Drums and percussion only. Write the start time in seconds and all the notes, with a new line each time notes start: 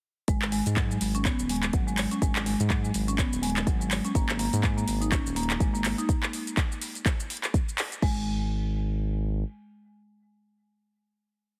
0.28 kick, closed hi-hat, shaker
0.42 clap, shaker
0.52 open hi-hat, shaker
0.66 closed hi-hat, shaker
0.77 kick, clap, closed hi-hat, shaker
0.91 shaker
1.01 open hi-hat, shaker
1.15 closed hi-hat, shaker
1.25 kick, clap, closed hi-hat, shaker
1.39 shaker
1.49 open hi-hat, shaker
1.56 closed hi-hat
1.63 clap, closed hi-hat, shaker
1.73 kick, closed hi-hat, shaker
1.88 shaker
1.98 clap, open hi-hat, shaker
2.11 closed hi-hat, shaker
2.22 kick, closed hi-hat, shaker
2.36 clap, shaker
2.46 open hi-hat, shaker
2.60 closed hi-hat, shaker
2.70 kick, clap, closed hi-hat, shaker
2.84 shaker
2.94 open hi-hat, shaker
3.08 closed hi-hat, shaker
3.18 kick, clap, closed hi-hat, shaker
3.33 shaker
3.43 open hi-hat, shaker
3.50 closed hi-hat
3.57 clap, closed hi-hat, shaker
3.67 kick, closed hi-hat, shaker
3.81 shaker
3.91 clap, open hi-hat, shaker
4.05 closed hi-hat, shaker
4.15 kick, closed hi-hat, shaker
4.29 clap, shaker
4.39 open hi-hat, shaker
4.53 closed hi-hat, shaker
4.64 kick, clap, closed hi-hat, shaker
4.78 shaker
4.88 open hi-hat, shaker
5.02 closed hi-hat, shaker
5.12 kick, clap, closed hi-hat, shaker
5.27 shaker
5.36 open hi-hat, shaker
5.43 closed hi-hat
5.50 clap, closed hi-hat, shaker
5.60 kick, closed hi-hat, shaker
5.75 shaker
5.85 clap, open hi-hat, shaker
5.98 closed hi-hat, shaker
6.09 kick, closed hi-hat, shaker
6.23 clap, shaker
6.33 open hi-hat, shaker
6.47 closed hi-hat, shaker
6.57 kick, clap, closed hi-hat, shaker
6.72 shaker
6.82 open hi-hat, shaker
6.95 closed hi-hat, shaker
7.06 kick, clap, closed hi-hat, shaker
7.20 shaker
7.30 open hi-hat, shaker
7.37 closed hi-hat
7.44 clap, closed hi-hat, shaker
7.54 kick, closed hi-hat, shaker
7.69 shaker
7.78 clap, open hi-hat, shaker
7.92 closed hi-hat, shaker
8.02 kick, crash